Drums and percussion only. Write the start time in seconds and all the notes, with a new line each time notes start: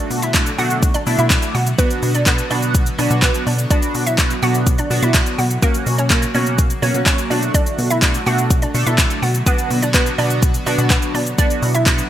0.11 open hi-hat, shaker
0.22 closed hi-hat, shaker
0.34 kick, clap, closed hi-hat, shaker
0.46 closed hi-hat, shaker
0.58 open hi-hat, shaker
0.70 closed hi-hat, shaker
0.83 kick, closed hi-hat, shaker
0.94 closed hi-hat, shaker
1.07 open hi-hat, shaker
1.19 closed hi-hat, shaker
1.30 kick, clap, closed hi-hat, shaker
1.42 closed hi-hat, shaker
1.55 open hi-hat, shaker
1.66 closed hi-hat, shaker
1.78 kick, closed hi-hat, shaker
1.91 closed hi-hat, shaker
2.03 open hi-hat, shaker
2.14 closed hi-hat, shaker
2.26 kick, clap, closed hi-hat, shaker
2.38 closed hi-hat, shaker
2.51 open hi-hat, shaker
2.62 closed hi-hat, shaker
2.75 kick, closed hi-hat, shaker
2.86 closed hi-hat, shaker
2.99 open hi-hat, shaker
3.11 closed hi-hat, shaker
3.22 kick, clap, closed hi-hat, shaker
3.34 closed hi-hat, shaker
3.47 open hi-hat, shaker
3.58 closed hi-hat, shaker
3.71 kick, closed hi-hat, shaker
3.82 closed hi-hat, shaker
3.95 open hi-hat, shaker
4.06 closed hi-hat, shaker
4.18 kick, clap, closed hi-hat, shaker
4.30 closed hi-hat, shaker
4.43 open hi-hat, shaker
4.54 closed hi-hat, shaker
4.67 kick, closed hi-hat, shaker
4.78 closed hi-hat, shaker
4.91 open hi-hat, shaker
5.03 closed hi-hat, shaker
5.14 kick, clap, closed hi-hat, shaker
5.26 closed hi-hat, shaker
5.38 open hi-hat, shaker
5.50 closed hi-hat, shaker
5.62 kick, closed hi-hat, shaker
5.74 closed hi-hat, shaker
5.86 open hi-hat, shaker
5.98 closed hi-hat, shaker
6.10 kick, clap, closed hi-hat, shaker
6.22 closed hi-hat, shaker
6.34 open hi-hat, shaker
6.46 closed hi-hat, shaker
6.58 kick, closed hi-hat, shaker
6.70 closed hi-hat, shaker
6.83 open hi-hat, shaker
6.94 closed hi-hat, shaker
7.06 kick, clap, closed hi-hat, shaker
7.18 closed hi-hat, shaker
7.31 open hi-hat, shaker
7.42 closed hi-hat, shaker
7.54 kick, closed hi-hat, shaker
7.66 closed hi-hat, shaker
7.79 open hi-hat, shaker
7.90 closed hi-hat, shaker
8.02 kick, clap, closed hi-hat, shaker
8.14 closed hi-hat, shaker
8.26 open hi-hat, shaker
8.38 closed hi-hat, shaker
8.50 kick, closed hi-hat, shaker
8.62 closed hi-hat, shaker
8.75 open hi-hat, shaker
8.86 closed hi-hat, shaker
8.98 kick, clap, closed hi-hat, shaker
9.10 closed hi-hat, shaker
9.23 open hi-hat, shaker
9.34 closed hi-hat, shaker
9.46 kick, closed hi-hat, shaker
9.58 closed hi-hat, shaker
9.71 open hi-hat, shaker
9.82 closed hi-hat, shaker
9.94 kick, clap, closed hi-hat, shaker
10.06 closed hi-hat, shaker
10.19 open hi-hat, shaker
10.30 closed hi-hat, shaker
10.42 kick, closed hi-hat, shaker
10.54 closed hi-hat, shaker
10.67 open hi-hat, shaker
10.78 closed hi-hat, shaker
10.90 kick, clap, closed hi-hat, shaker
11.02 closed hi-hat, shaker
11.15 open hi-hat, shaker
11.26 closed hi-hat, shaker
11.38 kick, closed hi-hat, shaker
11.50 closed hi-hat, shaker
11.63 open hi-hat, shaker
11.74 closed hi-hat, shaker
11.86 kick, clap, closed hi-hat, shaker
11.98 closed hi-hat, shaker